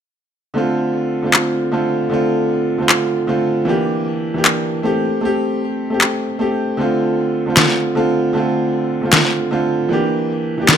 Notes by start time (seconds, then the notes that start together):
0.54 D3 A3 C4
0.58 F4
1.23 D3 A3 C4 F4
1.34 clap
1.72 D3 A3 C4 F4
2.10 D3 A3 C4 F4
2.78 D3 A3 C4
2.82 F4
2.89 clap
3.27 D3 A3 C4 F4
3.65 E3 A#3 D4 G4
4.34 E3 A#3 D4 G4
4.45 clap
4.83 A3 C4 G4
5.21 A3 C4
5.25 G4
5.90 A3 C4 G4
6.01 clap
6.39 A3 C4 G4
6.77 D3 A3 C4
6.81 F4
7.46 D3 A3 C4
7.50 F4
7.57 snare, clap
7.95 D3 A3 C4 F4
8.33 D3 A3 C4
8.37 F4
9.02 D3 A3 C4 F4
9.13 snare, clap
9.51 D3 A3 C4 F4
9.89 E3 A#3 D4 G4
10.58 E3 A#3 D4 G4
10.69 snare, clap